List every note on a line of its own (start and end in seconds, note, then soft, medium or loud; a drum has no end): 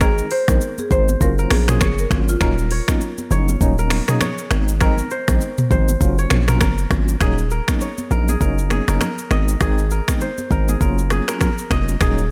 0.00 0.22 G#1 loud
0.00 0.24 D#3 loud
0.00 0.24 G#3 medium
0.00 0.25 C4 medium
0.00 0.25 D#4 loud
0.00 0.65 G#4 medium
0.00 0.16 G#4 medium
0.00 1.29 A#4 loud
0.00 0.37 C#5 medium
0.00 finger snap medium
0.00 kick loud
0.00 cross-stick loud
0.00 shaker medium
0.18 shaker medium
0.31 0.91 C5 medium
0.31 0.46 C5 medium
0.31 open hi-hat soft
0.31 shaker medium
0.48 0.59 A#1 loud
0.48 0.69 D#3 medium
0.48 0.70 G#3 medium
0.48 0.70 C4 medium
0.48 0.70 D#4 medium
0.48 0.59 A#4 medium
0.48 finger snap medium
0.48 kick medium
0.48 cross-stick medium
0.48 high conga medium
0.48 shaker loud
0.61 shaker medium
0.78 0.89 G#4 medium
0.78 high conga medium
0.78 shaker soft
0.91 1.16 G#1 medium
0.91 1.14 D#3 medium
0.91 1.15 G#3 medium
0.91 1.15 C4 medium
0.91 1.15 D#4 medium
0.91 1.87 C5 medium
0.91 1.06 C5 medium
0.91 kick loud
0.91 shaker medium
1.09 high conga medium
1.09 shaker loud
1.21 1.46 F#1 loud
1.21 1.64 F#3 medium
1.21 1.64 A#3 medium
1.21 1.64 C#4 medium
1.21 1.64 F4 loud
1.21 1.36 A#4 medium
1.21 kick loud
1.21 shaker medium
1.38 2.41 A#4 medium
1.38 shaker soft
1.50 1.82 A#1 medium
1.50 1.66 G#4 medium
1.50 finger snap medium
1.50 cross-stick loud
1.50 open hi-hat medium
1.50 high conga medium
1.50 shaker medium
1.68 1.89 F#3 medium
1.68 1.89 A#3 medium
1.68 1.90 C#4 medium
1.68 1.90 F4 medium
1.68 3.05 G#4 medium
1.68 finger snap medium
1.68 cross-stick medium
1.68 mid tom medium
1.68 shaker medium
1.81 2.06 F#1 loud
1.81 2.71 C#5 medium
1.81 finger snap medium
1.81 kick medium
1.81 cross-stick loud
1.81 high conga medium
1.81 low conga medium
1.81 shaker medium
1.98 2.10 A#4 medium
1.98 shaker medium
2.11 2.36 G#1 medium
2.11 2.34 F#3 medium
2.11 2.35 A#3 medium
2.11 2.35 C#4 medium
2.11 2.35 F4 medium
2.11 finger snap medium
2.11 kick loud
2.11 cross-stick loud
2.11 high conga medium
2.11 shaker medium
2.28 2.40 F4 medium
2.28 shaker medium
2.40 2.81 D#1 loud
2.40 2.64 F#3 loud
2.40 2.64 A#3 medium
2.40 2.65 C#4 medium
2.40 2.65 D#4 loud
2.40 3.69 A#4 loud
2.40 finger snap medium
2.40 kick loud
2.40 cross-stick loud
2.40 shaker medium
2.58 shaker medium
2.71 3.31 C#5 medium
2.71 open hi-hat medium
2.71 shaker medium
2.88 3.09 F#3 medium
2.88 3.09 A#3 medium
2.88 3.10 C#4 medium
2.88 3.10 D#4 medium
2.88 finger snap medium
2.88 kick medium
2.88 cross-stick loud
2.88 high conga medium
2.88 shaker loud
3.01 shaker medium
3.18 high conga medium
3.18 shaker medium
3.30 3.56 F#1 medium
3.30 3.54 F#3 medium
3.30 3.54 A#3 medium
3.30 3.55 C#4 medium
3.30 3.55 D#4 medium
3.30 4.21 C#5 medium
3.30 low conga medium
3.30 shaker medium
3.48 high conga medium
3.48 shaker loud
3.61 4.01 D#1 loud
3.61 4.04 F#3 medium
3.61 4.04 A#3 medium
3.61 4.04 C#4 medium
3.61 4.04 D#4 loud
3.61 kick loud
3.61 shaker medium
3.78 4.81 A#4 medium
3.78 shaker medium
3.90 finger snap medium
3.90 cross-stick medium
3.90 open hi-hat medium
3.90 high conga medium
3.90 shaker medium
4.08 4.29 F#3 medium
4.08 4.29 A#3 medium
4.08 4.30 C#4 medium
4.08 4.30 D#4 medium
4.08 5.45 G#4 medium
4.08 finger snap medium
4.08 cross-stick medium
4.08 mid tom medium
4.08 shaker medium
4.21 5.17 C#5 medium
4.21 finger snap medium
4.21 cross-stick medium
4.21 high conga medium
4.21 low conga medium
4.21 shaker medium
4.38 shaker medium
4.51 5.02 G#1 loud
4.51 4.74 D#3 medium
4.51 4.74 G#3 medium
4.51 4.75 C4 medium
4.51 4.75 D#4 medium
4.51 finger snap medium
4.51 cross-stick loud
4.51 high conga medium
4.51 shaker medium
4.68 shaker medium
4.81 5.04 D#3 loud
4.81 5.04 G#3 medium
4.81 5.05 C4 medium
4.81 5.05 D#4 loud
4.81 6.09 A#4 loud
4.81 finger snap medium
4.81 kick loud
4.81 cross-stick loud
4.81 low conga medium
4.81 shaker medium
4.98 high conga medium
4.98 shaker medium
5.11 5.71 C5 medium
5.11 shaker medium
5.28 5.39 A#1 loud
5.28 5.49 D#3 medium
5.28 5.49 G#3 medium
5.28 5.50 C4 medium
5.28 5.50 D#4 medium
5.28 finger snap medium
5.28 kick medium
5.28 cross-stick medium
5.28 high conga medium
5.28 shaker loud
5.41 shaker medium
5.58 mid tom medium
5.58 high conga medium
5.58 shaker medium
5.70 5.96 G#1 loud
5.70 5.94 D#3 medium
5.70 5.94 G#3 medium
5.70 5.95 C4 medium
5.70 5.95 D#4 medium
5.70 6.25 C5 medium
5.70 kick loud
5.70 low conga medium
5.70 shaker medium
5.88 high conga medium
5.88 shaker loud
6.00 6.26 F#1 loud
6.00 6.44 F#3 medium
6.00 6.44 A#3 medium
6.00 6.44 C#4 medium
6.00 6.44 F4 loud
6.00 kick loud
6.00 shaker medium
6.18 7.33 C#5 medium
6.18 shaker medium
6.30 6.62 A#1 medium
6.30 finger snap medium
6.30 cross-stick loud
6.30 mid tom medium
6.30 high conga medium
6.30 shaker medium
6.48 6.69 F#3 medium
6.48 6.69 A#3 medium
6.48 6.70 C#4 medium
6.48 6.70 F4 medium
6.48 6.61 A#4 medium
6.48 finger snap medium
6.48 cross-stick medium
6.48 mid tom medium
6.48 shaker medium
6.61 6.86 F#1 loud
6.61 7.51 A#4 medium
6.61 finger snap medium
6.61 kick medium
6.61 cross-stick medium
6.61 high conga medium
6.61 low conga medium
6.61 shaker medium
6.78 shaker medium
6.90 7.16 G#1 loud
6.90 7.14 F#3 medium
6.90 7.14 A#3 medium
6.90 7.15 C#4 medium
6.90 7.15 F4 medium
6.90 finger snap medium
6.90 kick loud
6.90 cross-stick loud
6.90 high conga medium
6.90 shaker soft
7.08 shaker medium
7.20 7.61 D#1 loud
7.20 7.44 F#3 medium
7.20 7.44 A#3 medium
7.20 7.45 C#4 medium
7.20 7.45 D#4 loud
7.20 8.28 G#4 medium
7.20 finger snap medium
7.20 kick loud
7.20 cross-stick loud
7.20 shaker medium
7.38 shaker soft
7.51 8.11 A#4 medium
7.51 shaker soft
7.68 7.89 F#3 medium
7.68 7.89 A#3 medium
7.68 7.90 C#4 medium
7.68 7.90 D#4 medium
7.68 finger snap medium
7.68 kick medium
7.68 cross-stick medium
7.68 high conga medium
7.68 shaker loud
7.81 8.96 C#5 medium
7.81 shaker medium
7.98 high conga medium
7.98 shaker medium
8.10 8.36 A#1 medium
8.10 8.34 F#3 medium
8.10 8.34 A#3 medium
8.10 8.35 C#4 medium
8.10 8.35 D#4 medium
8.10 8.41 A#4 medium
8.10 low conga medium
8.10 shaker medium
8.28 8.71 G#4 medium
8.28 high conga medium
8.28 shaker medium
8.40 8.81 F#1 loud
8.40 8.84 F#3 medium
8.40 8.84 A#3 medium
8.40 8.84 C#4 medium
8.40 8.84 D#4 loud
8.40 8.88 A#4 medium
8.40 kick medium
8.40 shaker medium
8.58 shaker soft
8.70 9.61 G#4 medium
8.70 finger snap medium
8.70 cross-stick medium
8.70 high conga medium
8.70 shaker medium
8.88 8.99 F#1 medium
8.88 9.09 F#3 medium
8.88 9.09 A#3 medium
8.88 9.10 C#4 medium
8.88 9.10 D#4 medium
8.88 9.01 A#4 medium
8.88 finger snap medium
8.88 cross-stick medium
8.88 shaker medium
9.01 9.91 A#4 medium
9.01 finger snap medium
9.01 cross-stick medium
9.01 high conga medium
9.01 low conga medium
9.01 shaker medium
9.18 shaker medium
9.30 9.56 G#1 loud
9.30 9.54 D#3 medium
9.30 9.54 G#3 medium
9.30 9.55 C4 medium
9.30 9.55 D#4 medium
9.30 10.39 D#5 medium
9.30 finger snap medium
9.30 cross-stick medium
9.30 high conga medium
9.30 shaker soft
9.48 shaker medium
9.60 10.01 G#1 loud
9.60 9.84 D#3 medium
9.60 9.84 G#3 medium
9.60 9.85 C4 medium
9.60 9.85 D#4 loud
9.60 10.68 G#4 loud
9.60 finger snap medium
9.60 kick loud
9.60 cross-stick loud
9.60 shaker medium
9.78 shaker medium
9.91 10.51 A#4 medium
9.91 shaker soft
10.08 10.29 D#3 medium
10.08 10.29 G#3 medium
10.08 10.30 C4 medium
10.08 10.30 D#4 medium
10.08 finger snap medium
10.08 kick medium
10.08 cross-stick medium
10.08 high conga medium
10.08 shaker loud
10.21 11.40 C5 medium
10.21 shaker medium
10.38 high conga medium
10.38 shaker soft
10.51 10.76 G#1 loud
10.51 10.74 D#3 medium
10.51 10.74 G#3 medium
10.51 10.75 C4 medium
10.51 10.75 D#4 medium
10.51 10.81 A#4 medium
10.51 kick medium
10.51 shaker medium
10.68 11.11 G#4 medium
10.68 high conga medium
10.68 shaker medium
10.81 11.21 F#1 loud
10.81 11.24 F#3 medium
10.81 11.24 A#3 medium
10.81 11.24 C#4 medium
10.81 11.24 F4 loud
10.81 11.28 A#4 medium
10.81 kick loud
10.81 shaker medium
10.98 shaker soft
11.10 12.01 G#4 medium
11.10 finger snap medium
11.10 cross-stick loud
11.10 high conga medium
11.10 shaker medium
11.28 11.49 F#3 medium
11.28 11.49 A#3 medium
11.28 11.50 C#4 medium
11.28 11.50 F4 medium
11.28 11.41 A#4 medium
11.28 finger snap medium
11.28 cross-stick medium
11.28 shaker medium
11.41 12.31 A#4 medium
11.41 finger snap medium
11.41 kick medium
11.41 cross-stick medium
11.41 high conga medium
11.41 low conga medium
11.41 shaker medium
11.58 shaker medium
11.70 11.96 F1 medium
11.70 11.94 F#3 medium
11.70 11.94 A#3 medium
11.70 11.95 C#4 medium
11.70 11.95 F4 medium
11.70 12.31 D#5 medium
11.70 finger snap medium
11.70 kick loud
11.70 cross-stick loud
11.70 high conga medium
11.70 shaker medium
11.88 shaker medium
12.00 12.31 D#1 loud
12.00 12.24 F#3 medium
12.00 12.24 A#3 medium
12.00 12.25 C#4 medium
12.00 12.25 D#4 loud
12.00 12.31 G#4 loud
12.00 finger snap medium
12.00 kick loud
12.00 cross-stick loud
12.00 shaker medium
12.18 shaker medium